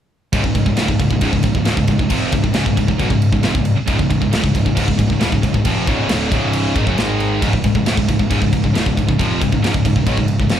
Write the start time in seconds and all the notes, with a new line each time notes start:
0.33 C#1 C#2 G#2, kick, crash
0.44 C#1 C#2 G#2, kick
0.55 C#1 C#2 G#2, kick, crash
0.66 C#1 C#2 G#2, kick
0.77 D1 D2 A2, snare, crash
0.88 C#1 C#2 G#2, kick
0.99 C#1 C#2 G#2, kick, crash
1.10 C#1 C#2 G#2, kick
1.21 C#1 C#2 G#2, kick, crash
1.32 C#1 C#2 G#2, kick
1.43 C#1 C#2 G#2, kick, crash
1.54 C#1 C#2 G#2, kick
1.65 D1 D2 A2, snare, crash
1.77 C#1 C#2 G#2, kick
1.87 C#1 C#2 G#2, kick, crash
1.98 C#1 C#2 G#2, kick
2.09 F1 F2 C3 F3, kick, crash
2.32 C#1 C#2 G#2, kick, crash
2.42 C#1 C#2 G#2, kick
2.53 C#1 C#2 G#2, snare, crash
2.65 C#1 C#2 G#2, kick
2.77 C#1 C#2 G#2, kick, crash
2.88 C#1 C#2 G#2, kick
2.99 B1 B2 F#3, kick, crash
3.10 C#1 C#2 G#2, kick
3.22 crash
3.32 C#1 C#2 G#2, kick
3.43 F1 F2 C3, snare, crash
3.54 C#1 C#2 G#2, kick
3.65 crash
3.76 muted distorted electric guitar stroke, muted picked electric bass stroke
3.87 C#1 C#2 G#2, kick, crash
3.98 C#1 C#2 G#2, kick
4.10 C#1 C#2 G#2, kick, crash
4.21 C#1 C#2 G#2, kick
4.32 D1 D2 A2, snare, crash
4.43 C#1 C#2 G#2, kick
4.55 C#1 C#2 G#2, kick, crash
4.66 C#1 C#2 G#2, kick
4.76 C#1 C#2 G#2, kick, crash
4.87 C#1 C#2 G#2, kick
4.98 C#1 C#2 G#2, kick, crash
5.08 C#1 C#2 G#2, kick
5.12 C#2
5.20 D1 D2 A2, snare, crash
5.31 C#1 C#2 G#2, kick
5.42 C#1 C#2 G#2, kick, crash
5.53 C#1 C#2 G#2, kick
5.65 F1 F2 C3 F3, kick, crash
5.87 C#1 C#2 G#2 C#3, kick, crash
6.09 D1 D2 A2 D3, snare, crash
6.31 C#1 C#2 G#2 C#3, kick, crash
6.53 crash
6.76 G#1 G#2 D#3, kick, crash
6.87 F#1 F#2 C#3, kick
6.98 G#1 G#2 D#3 G#3, snare, crash
7.20 crash
7.42 C#1 C#2 G#2, kick, crash
7.53 C#1 C#2 G#2, kick
7.64 C#1 C#2 G#2, kick, crash
7.75 C#1 C#2 G#2, kick
7.86 D1 D2 A2, snare, crash
7.97 C#1 C#2 G#2, kick
8.09 C#1 C#2 G#2, kick, crash
8.19 C#1 C#2 G#2, kick
8.31 C#1 C#2 G#2, kick, crash
8.42 C#1 C#2 G#2, kick
8.53 C#1 C#2 G#2, kick, crash
8.64 C#1 C#2 G#2, kick
8.75 D1 D2 A2, snare, crash
8.86 C#1 C#2 G#2, kick
8.97 C#1 C#2 G#2, kick, crash
9.08 C#1 C#2 G#2, kick
9.19 F1 F2 C3 F3, kick, crash
9.41 C#1 C#2 G#2, kick, crash
9.52 C#1 C#2 G#2, kick
9.62 C#1 C#2 G#2, snare, crash
9.74 C#1 C#2 G#2, kick
9.85 C#1 C#2 G#2, kick, crash
9.96 C#1 C#2 G#2, kick
10.06 B1 B2 F#3, kick, crash
10.17 C#1 C#2 G#2, kick
10.28 crash
10.39 C#1 C#2 G#2, kick
10.49 F1 F2 C3, snare, crash